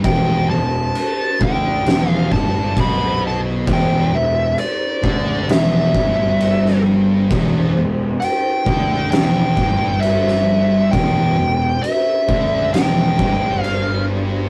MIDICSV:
0, 0, Header, 1, 5, 480
1, 0, Start_track
1, 0, Key_signature, 1, "minor"
1, 0, Tempo, 906344
1, 24, Time_signature, 4, 2, 24, 8
1, 7674, End_track
2, 0, Start_track
2, 0, Title_t, "Lead electric guitar"
2, 0, Program_c, 0, 29
2, 28, Note_on_c, 0, 79, 97
2, 260, Note_off_c, 0, 79, 0
2, 262, Note_on_c, 0, 81, 90
2, 756, Note_off_c, 0, 81, 0
2, 758, Note_on_c, 0, 79, 90
2, 1108, Note_off_c, 0, 79, 0
2, 1108, Note_on_c, 0, 77, 90
2, 1231, Note_off_c, 0, 77, 0
2, 1233, Note_on_c, 0, 81, 80
2, 1477, Note_off_c, 0, 81, 0
2, 1482, Note_on_c, 0, 83, 101
2, 1699, Note_off_c, 0, 83, 0
2, 1733, Note_on_c, 0, 81, 89
2, 1794, Note_off_c, 0, 81, 0
2, 1975, Note_on_c, 0, 79, 99
2, 2197, Note_on_c, 0, 76, 92
2, 2209, Note_off_c, 0, 79, 0
2, 2416, Note_off_c, 0, 76, 0
2, 2433, Note_on_c, 0, 74, 87
2, 2920, Note_off_c, 0, 74, 0
2, 2923, Note_on_c, 0, 76, 70
2, 3615, Note_off_c, 0, 76, 0
2, 4344, Note_on_c, 0, 79, 100
2, 4817, Note_off_c, 0, 79, 0
2, 4823, Note_on_c, 0, 79, 102
2, 5297, Note_on_c, 0, 76, 91
2, 5320, Note_off_c, 0, 79, 0
2, 5780, Note_on_c, 0, 79, 104
2, 5797, Note_off_c, 0, 76, 0
2, 6262, Note_on_c, 0, 76, 77
2, 6277, Note_off_c, 0, 79, 0
2, 6722, Note_off_c, 0, 76, 0
2, 6743, Note_on_c, 0, 79, 87
2, 7214, Note_off_c, 0, 79, 0
2, 7214, Note_on_c, 0, 77, 87
2, 7441, Note_off_c, 0, 77, 0
2, 7674, End_track
3, 0, Start_track
3, 0, Title_t, "Distorted electric guitar"
3, 0, Program_c, 1, 30
3, 21, Note_on_c, 1, 40, 93
3, 256, Note_off_c, 1, 40, 0
3, 264, Note_on_c, 1, 40, 67
3, 457, Note_off_c, 1, 40, 0
3, 749, Note_on_c, 1, 50, 104
3, 981, Note_off_c, 1, 50, 0
3, 983, Note_on_c, 1, 40, 112
3, 1217, Note_off_c, 1, 40, 0
3, 1219, Note_on_c, 1, 43, 108
3, 1456, Note_off_c, 1, 43, 0
3, 1463, Note_on_c, 1, 47, 103
3, 1938, Note_off_c, 1, 47, 0
3, 1939, Note_on_c, 1, 40, 92
3, 2177, Note_off_c, 1, 40, 0
3, 2185, Note_on_c, 1, 40, 67
3, 2379, Note_off_c, 1, 40, 0
3, 2661, Note_on_c, 1, 50, 95
3, 2898, Note_off_c, 1, 50, 0
3, 2907, Note_on_c, 1, 40, 98
3, 3141, Note_off_c, 1, 40, 0
3, 3146, Note_on_c, 1, 43, 102
3, 3860, Note_off_c, 1, 43, 0
3, 3866, Note_on_c, 1, 40, 96
3, 4096, Note_off_c, 1, 40, 0
3, 4103, Note_on_c, 1, 40, 67
3, 4298, Note_off_c, 1, 40, 0
3, 4584, Note_on_c, 1, 50, 94
3, 4819, Note_off_c, 1, 50, 0
3, 4823, Note_on_c, 1, 40, 102
3, 5059, Note_off_c, 1, 40, 0
3, 5066, Note_on_c, 1, 43, 98
3, 5779, Note_off_c, 1, 43, 0
3, 5782, Note_on_c, 1, 40, 108
3, 6017, Note_off_c, 1, 40, 0
3, 6026, Note_on_c, 1, 40, 75
3, 6218, Note_off_c, 1, 40, 0
3, 6507, Note_on_c, 1, 50, 99
3, 6739, Note_off_c, 1, 50, 0
3, 6750, Note_on_c, 1, 40, 96
3, 6989, Note_off_c, 1, 40, 0
3, 6989, Note_on_c, 1, 43, 97
3, 7674, Note_off_c, 1, 43, 0
3, 7674, End_track
4, 0, Start_track
4, 0, Title_t, "Picked electric bass"
4, 0, Program_c, 2, 34
4, 20, Note_on_c, 2, 28, 95
4, 246, Note_off_c, 2, 28, 0
4, 264, Note_on_c, 2, 28, 82
4, 488, Note_off_c, 2, 28, 0
4, 747, Note_on_c, 2, 38, 86
4, 970, Note_off_c, 2, 38, 0
4, 983, Note_on_c, 2, 28, 98
4, 1208, Note_off_c, 2, 28, 0
4, 1224, Note_on_c, 2, 31, 84
4, 1449, Note_off_c, 2, 31, 0
4, 1463, Note_on_c, 2, 35, 97
4, 1925, Note_off_c, 2, 35, 0
4, 1944, Note_on_c, 2, 28, 98
4, 2170, Note_off_c, 2, 28, 0
4, 2181, Note_on_c, 2, 28, 75
4, 2408, Note_off_c, 2, 28, 0
4, 2666, Note_on_c, 2, 38, 87
4, 2891, Note_off_c, 2, 38, 0
4, 2897, Note_on_c, 2, 28, 102
4, 3126, Note_off_c, 2, 28, 0
4, 3149, Note_on_c, 2, 31, 103
4, 3848, Note_off_c, 2, 31, 0
4, 3871, Note_on_c, 2, 28, 98
4, 4093, Note_off_c, 2, 28, 0
4, 4110, Note_on_c, 2, 28, 84
4, 4333, Note_off_c, 2, 28, 0
4, 4589, Note_on_c, 2, 38, 100
4, 4812, Note_off_c, 2, 38, 0
4, 4826, Note_on_c, 2, 28, 89
4, 5050, Note_off_c, 2, 28, 0
4, 5070, Note_on_c, 2, 31, 92
4, 5767, Note_off_c, 2, 31, 0
4, 5790, Note_on_c, 2, 28, 95
4, 6012, Note_off_c, 2, 28, 0
4, 6031, Note_on_c, 2, 28, 76
4, 6252, Note_off_c, 2, 28, 0
4, 6505, Note_on_c, 2, 38, 99
4, 6729, Note_off_c, 2, 38, 0
4, 6743, Note_on_c, 2, 28, 82
4, 6967, Note_off_c, 2, 28, 0
4, 6986, Note_on_c, 2, 31, 92
4, 7674, Note_off_c, 2, 31, 0
4, 7674, End_track
5, 0, Start_track
5, 0, Title_t, "Drums"
5, 21, Note_on_c, 9, 49, 65
5, 23, Note_on_c, 9, 36, 109
5, 74, Note_off_c, 9, 49, 0
5, 76, Note_off_c, 9, 36, 0
5, 504, Note_on_c, 9, 49, 56
5, 557, Note_off_c, 9, 49, 0
5, 746, Note_on_c, 9, 36, 107
5, 799, Note_off_c, 9, 36, 0
5, 987, Note_on_c, 9, 49, 61
5, 996, Note_on_c, 9, 38, 127
5, 1040, Note_off_c, 9, 49, 0
5, 1049, Note_off_c, 9, 38, 0
5, 1226, Note_on_c, 9, 36, 87
5, 1279, Note_off_c, 9, 36, 0
5, 1466, Note_on_c, 9, 36, 97
5, 1470, Note_on_c, 9, 49, 56
5, 1519, Note_off_c, 9, 36, 0
5, 1523, Note_off_c, 9, 49, 0
5, 1946, Note_on_c, 9, 36, 112
5, 1947, Note_on_c, 9, 49, 64
5, 1999, Note_off_c, 9, 36, 0
5, 2000, Note_off_c, 9, 49, 0
5, 2426, Note_on_c, 9, 49, 47
5, 2479, Note_off_c, 9, 49, 0
5, 2667, Note_on_c, 9, 36, 102
5, 2720, Note_off_c, 9, 36, 0
5, 2909, Note_on_c, 9, 49, 63
5, 2917, Note_on_c, 9, 38, 106
5, 2962, Note_off_c, 9, 49, 0
5, 2970, Note_off_c, 9, 38, 0
5, 3149, Note_on_c, 9, 36, 103
5, 3202, Note_off_c, 9, 36, 0
5, 3392, Note_on_c, 9, 49, 49
5, 3445, Note_off_c, 9, 49, 0
5, 3525, Note_on_c, 9, 38, 33
5, 3578, Note_off_c, 9, 38, 0
5, 3870, Note_on_c, 9, 36, 112
5, 3875, Note_on_c, 9, 49, 56
5, 3923, Note_off_c, 9, 36, 0
5, 3928, Note_off_c, 9, 49, 0
5, 4353, Note_on_c, 9, 49, 54
5, 4406, Note_off_c, 9, 49, 0
5, 4588, Note_on_c, 9, 36, 99
5, 4641, Note_off_c, 9, 36, 0
5, 4829, Note_on_c, 9, 49, 60
5, 4837, Note_on_c, 9, 38, 121
5, 4882, Note_off_c, 9, 49, 0
5, 4890, Note_off_c, 9, 38, 0
5, 5069, Note_on_c, 9, 36, 97
5, 5122, Note_off_c, 9, 36, 0
5, 5309, Note_on_c, 9, 49, 52
5, 5362, Note_off_c, 9, 49, 0
5, 5441, Note_on_c, 9, 38, 35
5, 5494, Note_off_c, 9, 38, 0
5, 5789, Note_on_c, 9, 36, 100
5, 5791, Note_on_c, 9, 49, 58
5, 5842, Note_off_c, 9, 36, 0
5, 5844, Note_off_c, 9, 49, 0
5, 6269, Note_on_c, 9, 49, 54
5, 6322, Note_off_c, 9, 49, 0
5, 6507, Note_on_c, 9, 36, 105
5, 6560, Note_off_c, 9, 36, 0
5, 6746, Note_on_c, 9, 49, 63
5, 6754, Note_on_c, 9, 38, 121
5, 6799, Note_off_c, 9, 49, 0
5, 6807, Note_off_c, 9, 38, 0
5, 6986, Note_on_c, 9, 36, 102
5, 7039, Note_off_c, 9, 36, 0
5, 7224, Note_on_c, 9, 49, 48
5, 7277, Note_off_c, 9, 49, 0
5, 7674, End_track
0, 0, End_of_file